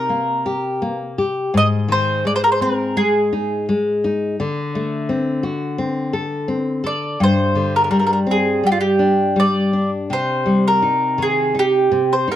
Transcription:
Already playing: nylon-string guitar C3, mandolin A#4
0.09 nylon-string guitar A#3
0.46 nylon-string guitar G4
0.82 nylon-string guitar A#3
1.18 nylon-string guitar G4
1.54 nylon-string guitar G#2, mandolin D#5
1.88 nylon-string guitar D#3, mandolin C5
2.25 nylon-string guitar G#3, mandolin D5
2.36 mandolin C5
2.44 mandolin A#4
2.52 mandolin C5
2.61 nylon-string guitar C4, mandolin A#4
2.97 nylon-string guitar G#3, mandolin G#4
3.33 nylon-string guitar D#4
3.69 nylon-string guitar G#3
4.04 nylon-string guitar D#4
4.40 nylon-string guitar D3
4.75 nylon-string guitar A3
5.09 nylon-string guitar C4
5.43 nylon-string guitar F#4
5.78 nylon-string guitar C4
6.13 nylon-string guitar A4
6.48 nylon-string guitar C4
6.84 nylon-string guitar A4, mandolin D5
7.20 nylon-string guitar G2, mandolin C5
7.55 nylon-string guitar D3
7.76 mandolin A#4
7.84 mandolin A#4
7.91 nylon-string guitar G3, mandolin A#4
7.99 mandolin A#4
8.07 mandolin A#4
8.13 mandolin A#4
8.27 nylon-string guitar C4
8.31 mandolin G#4
8.63 nylon-string guitar G3, mandolin G4
8.72 mandolin F4
8.81 mandolin G4
8.99 nylon-string guitar D4
9.36 nylon-string guitar G3, mandolin D5
9.73 nylon-string guitar D4
10.10 nylon-string guitar C3, mandolin C5
10.46 nylon-string guitar G3
10.68 mandolin A#4
10.82 nylon-string guitar D#4
11.18 nylon-string guitar D#3
11.22 mandolin G#4
11.54 nylon-string guitar D#4
11.59 mandolin G4
11.91 nylon-string guitar C3
12.13 mandolin C5
12.28 nylon-string guitar D#4, mandolin A#4

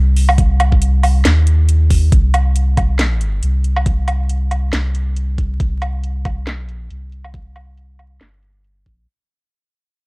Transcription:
Already playing: sub bass C2
0.16 open hi-hat
0.29 low woodblock
0.38 kick, closed hi-hat
0.60 closed hi-hat, low woodblock
0.72 kick
0.82 closed hi-hat
1.03 open hi-hat, low woodblock
1.25 sub bass D#2, snare, closed hi-hat
1.47 closed hi-hat
1.69 closed hi-hat
1.90 kick, open hi-hat
2.12 sub bass C2, kick, closed hi-hat
2.34 closed hi-hat, low woodblock
2.56 closed hi-hat
2.77 kick, closed hi-hat, low woodblock
2.99 snare, closed hi-hat
3.21 closed hi-hat
3.43 sub bass C2, closed hi-hat
3.64 closed hi-hat
3.76 low woodblock
3.86 kick, closed hi-hat
4.08 closed hi-hat, low woodblock
4.29 closed hi-hat
4.51 closed hi-hat, low woodblock
4.73 sub bass C2, snare, closed hi-hat
4.95 closed hi-hat
5.16 closed hi-hat
5.38 kick, closed hi-hat
5.60 sub bass C2, kick, closed hi-hat
5.82 closed hi-hat, low woodblock
6.04 closed hi-hat
6.25 kick, closed hi-hat, low woodblock
6.47 snare, closed hi-hat
6.51 sub bass B1
6.69 closed hi-hat
6.77 sub bass A#1
6.90 sub bass C2, closed hi-hat
7.12 closed hi-hat
7.24 low woodblock
7.34 kick, closed hi-hat
7.56 closed hi-hat, low woodblock
7.77 closed hi-hat
7.99 closed hi-hat, low woodblock
8.21 sub bass G1, snare, closed hi-hat
8.43 closed hi-hat
8.64 closed hi-hat
8.86 sub bass A#1, kick

